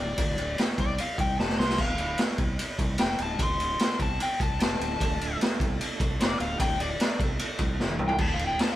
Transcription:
Already playing: electric slide guitar D5
0.00 fingered electric bass D1
0.18 fingered electric bass D1, kick, ride
0.38 fingered electric bass D1, ride
0.58 muted fingered electric bass stroke, snare, ride
0.78 fingered electric bass C2, electric slide guitar D5, kick, ride
0.98 electric slide guitar F5, muted fingered electric bass stroke, ride
1.18 fingered electric bass C2, electric slide guitar G5, kick, ride
1.39 fingered electric bass F1, electric slide guitar A5, snare
1.49 snare
1.58 fingered electric bass C2, electric slide guitar C6, snare
1.69 snare
1.78 fingered electric bass D1, electric slide guitar F5, kick, crash
1.98 fingered electric bass D1, ride
2.18 muted fingered electric bass stroke, snare, ride
2.38 fingered electric bass C2, kick, ride
2.59 muted fingered electric bass stroke, ride
2.79 fingered electric bass C2, kick, ride
2.98 fingered electric bass F1, electric slide guitar G5, snare, ride
3.18 fingered electric bass D1, ride
3.23 electric slide guitar A5
3.39 fingered electric bass D1, electric slide guitar C6, kick, ride
3.60 fingered electric bass D1, ride
3.79 muted fingered electric bass stroke, snare, ride
4.00 fingered electric bass C2, electric slide guitar A5, kick, ride
4.20 electric slide guitar G5, muted fingered electric bass stroke, ride
4.40 fingered electric bass C2, electric slide guitar A5, kick, ride
4.59 fingered electric bass F1, electric slide guitar A5, snare, ride
4.69 tonewheel organ G3 A3
4.74 tonewheel organ B3 C4
4.80 fingered electric bass D1, tonewheel organ D4 E4, ride
4.86 tonewheel organ F4 G4
4.92 tonewheel organ A4 B4
4.97 fingered electric bass D1, tonewheel organ A3 D4 F4 A4 C5, kick
5.01 ride
5.20 fingered electric bass D1, ride
5.41 muted fingered electric bass stroke, snare, ride
5.60 fingered electric bass C2, kick, ride
5.80 muted fingered electric bass stroke, ride
6.00 fingered electric bass C2, kick, ride
6.20 fingered electric bass F1, electric slide guitar D5, snare, ride
6.40 fingered electric bass D1, electric slide guitar F5, ride
6.60 fingered electric bass D1, electric slide guitar G5, kick, ride
6.80 fingered electric bass D1, electric slide guitar D5, ride
7.00 muted fingered electric bass stroke, snare, ride
7.19 fingered electric bass C2, kick, ride
7.39 muted fingered electric bass stroke, ride
7.59 fingered electric bass C2, kick, ride
7.79 fingered electric bass F1, snare
7.89 high tom
7.99 fingered electric bass C2, mid tom
8.08 electric slide guitar G5, floor tom
8.18 fingered electric bass D1, tonewheel organ A3 D4 F4, electric slide guitar A5, kick, crash
8.34 electric slide guitar F5
8.39 fingered electric bass D1, ride
8.47 electric slide guitar G5
8.59 electric slide guitar A5, muted fingered electric bass stroke, snare, ride
8.72 electric slide guitar F5

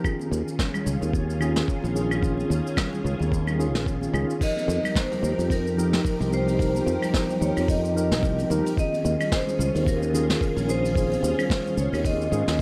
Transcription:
0.03 tine electric piano D#3 C#4 F4 G#4, string machine D#3 C#4 F4 G#4, kick, cabasa, claves
0.20 high conga, cabasa
0.31 fretless electric bass D#2, cabasa
0.48 cabasa
0.59 kick, snare, high conga, low conga, cabasa
0.74 low conga, cabasa, claves
0.86 fretless electric bass C#2, cabasa
1.01 fretless electric bass D#2, high conga, cabasa
1.13 kick, cabasa
1.30 cabasa
1.40 tine electric piano D#3 C#4 F4 G#4, high conga, cabasa, claves
1.56 snare, cabasa
1.68 kick, cabasa
1.83 fretless electric bass A#1, high conga, cabasa
1.94 tine electric piano D#3 C#4 F4 G#4, cabasa
2.11 cabasa, claves
2.21 tine electric piano D#3 C#4 F4 G#4, kick, cabasa
2.37 high conga, cabasa
2.50 fretless electric bass D#2, cabasa
2.67 cabasa
2.76 kick, snare, high conga, low conga, cabasa, claves
2.93 low conga, cabasa
3.04 fretless electric bass C#2, cabasa
3.20 fretless electric bass D#2, high conga, cabasa
3.32 kick, cabasa
3.47 low conga, cabasa, claves
3.58 tine electric piano D#3 C#4 F4 G#4, high conga, cabasa
3.75 fretless electric bass A#1, snare, cabasa
3.86 kick, cabasa
4.01 high conga, cabasa
4.13 fretless electric bass C#2, tine electric piano D#3 C#4 F4 G#4, cabasa, claves
4.30 cabasa
4.39 tine electric piano F3 D#4 G4 A#4, string machine F3 D#4 G4 A#4, kick, open hi-hat, crash, cabasa
4.43 vibraphone D#5
4.57 open hi-hat, high conga, cabasa
4.68 fretless electric bass F2, cabasa
4.84 open hi-hat, high bongo, low conga, cabasa, claves
4.95 vibraphone C5, kick, snare, open hi-hat, high conga, cabasa
5.11 open hi-hat, low conga, cabasa
5.22 fretless electric bass D#2, high bongo, cabasa
5.38 fretless electric bass F2, open hi-hat, high conga, cabasa
5.50 vibraphone A#4, kick, open hi-hat, cabasa
5.67 cabasa
5.77 tine electric piano F3 D#4 G4 A#4, high bongo, high conga, cabasa
5.93 snare, open hi-hat, cabasa
6.05 kick, open hi-hat, cabasa
6.20 fretless electric bass C2, open hi-hat, high bongo, high conga, cabasa
6.31 tine electric piano F3 D#4 G4 A#4, vibraphone C5, cabasa
6.48 open hi-hat, cabasa
6.57 tine electric piano F3 D#4 G4 A#4, kick, open hi-hat
6.62 cabasa
6.74 open hi-hat, high bongo, high conga, cabasa
6.86 fretless electric bass F2, cabasa
7.02 open hi-hat, low conga, cabasa, claves
7.13 kick, snare, open hi-hat, high bongo, high conga, cabasa
7.29 open hi-hat, low conga, cabasa
7.41 fretless electric bass D#2, vibraphone C#5, cabasa
7.56 fretless electric bass F2, open hi-hat, high conga, cabasa, claves
7.68 vibraphone D#5, kick, open hi-hat, high bongo, cabasa
7.85 cabasa
7.95 tine electric piano F3 D#4 G4 A#4, high conga, cabasa
8.11 fretless electric bass C2, snare, open hi-hat, high bongo, cabasa
8.22 kick, open hi-hat, cabasa
8.38 open hi-hat, high conga, cabasa
8.50 fretless electric bass D#2, tine electric piano F3 D#4 G4 A#4, low conga, cabasa
8.66 open hi-hat, high bongo, cabasa
8.76 tine electric piano D#3 F4 G#4, string machine D#3 C#4 F4 G#4, vibraphone D#5, kick, open hi-hat, cabasa
8.93 open hi-hat, high conga, cabasa
9.04 fretless electric bass D#2, high bongo, cabasa
9.20 open hi-hat, low conga, cabasa, claves
9.32 vibraphone C5, kick, snare, open hi-hat, high conga, cabasa
9.47 open hi-hat, low conga, cabasa
9.59 fretless electric bass C#2, high bongo, cabasa
9.75 fretless electric bass D#2, open hi-hat, high conga, cabasa
9.86 vibraphone A#4, kick, open hi-hat, cabasa
10.02 high bongo, cabasa
10.13 tine electric piano D#3 C#4 F4 G#4, high conga, cabasa
10.30 snare, open hi-hat, cabasa
10.41 kick, open hi-hat, cabasa
10.55 fretless electric bass A#1, open hi-hat, high bongo, high conga, cabasa
10.67 tine electric piano D#3 C#4 F4 G#4, vibraphone C5, cabasa
10.85 open hi-hat, cabasa
10.94 tine electric piano D#3 C#4 F4 G#4, kick, open hi-hat, high bongo, cabasa
11.10 open hi-hat, high conga, cabasa
11.23 fretless electric bass D#2, cabasa
11.39 open hi-hat, low conga, cabasa, claves
11.50 kick, snare, open hi-hat, high bongo, high conga, cabasa
11.66 open hi-hat, low conga, cabasa
11.77 fretless electric bass C#2, vibraphone C#5, cabasa
11.93 fretless electric bass D#2, open hi-hat, high bongo, high conga, cabasa, claves
12.04 vibraphone D#5, kick, open hi-hat, cabasa
12.22 cabasa
12.31 fretless electric bass G#2, tine electric piano D#3 C#4 F4 G#4, high conga, cabasa
12.47 fretless electric bass D#2, snare, open hi-hat, high bongo, cabasa

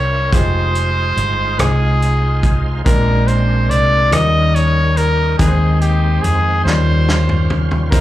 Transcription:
Already playing: fingered electric bass C2, grand piano C3 G3 C4 E4 A#4, tonewheel organ G3 C4 E4 A#4, trumpet C#5
0.32 fingered electric bass F1, tonewheel organ G#3 D#4 F4 C5, grand piano D#4 F4 G4 G#4, trumpet C5, kick, closed hi-hat
0.75 closed hi-hat
1.17 fingered electric bass G1, closed hi-hat
1.58 fingered electric bass C2, grand piano G#3 D#4 F4 G#4, trumpet G#4, cross-stick, closed hi-hat
2.02 closed hi-hat
2.43 kick, closed hi-hat
2.84 fingered electric bass A#1, grand piano A#2 G#3 C4 C#4 A#4, tonewheel organ G#3 C4 D4 A#4, trumpet A#4, kick, closed hi-hat
2.92 grand piano D4
3.28 trumpet C5, closed hi-hat
3.70 fingered electric bass C2, trumpet D5, closed hi-hat
4.11 fingered electric bass D#2, grand piano D#3 F3 C#4 D#4 A#4, tonewheel organ G3 C#4 D#4 A#4, trumpet D#5, cross-stick, closed hi-hat
4.17 grand piano G3
4.55 trumpet C#5, closed hi-hat
4.97 trumpet A#4, closed hi-hat
5.39 fingered electric bass D#2, grand piano D#3 G#3 C4 D#4 B4, tonewheel organ G#3 C4 D#4 C5, trumpet G#4, kick, closed hi-hat
5.48 grand piano C5
5.81 trumpet G4, closed hi-hat
6.22 fingered electric bass F2, trumpet G#4, closed hi-hat
6.64 fingered electric bass D#2, grand piano D#3 G3 C#4 F4 C5, tonewheel organ G3 C#4 F4 C5, trumpet C5, snare
7.09 snare
7.29 mid tom
7.50 floor tom
7.71 floor tom
7.91 fingered electric bass C#2, grand piano C3 C#3 D#4 E4 C5, tonewheel organ F3 D#4 F4 D#5, trumpet A#4, kick, closed hi-hat

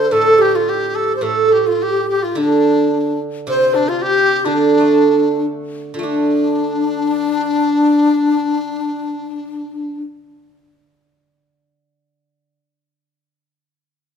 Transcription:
Already playing: guzheng D3, xiao A4, dizi C5
0.11 guzheng A2, xiao A4, dizi A4
0.39 xiao G4, dizi G4
0.55 dizi F4, xiao F4
0.69 dizi G4, xiao G4
0.95 dizi A4
1.16 dizi C5
1.21 guzheng A2, dizi A4
1.26 xiao A4
1.52 dizi G4
1.66 dizi F4, xiao F4
1.82 dizi G4, xiao G4
2.09 dizi G4
2.23 dizi F4, xiao F4
2.35 guzheng D3, dizi D4, xiao D4
2.95 xiao D4
3.47 guzheng C3, xiao C5, dizi C5
3.74 dizi D4
3.88 dizi F4, xiao F4
4.02 dizi G4, xiao G4
4.45 guzheng D3, dizi D4, xiao D4
4.80 guzheng A3
5.94 guzheng D3, xiao F4
5.99 guzheng A3
6.03 guzheng D4, xiao D4, dizi D4

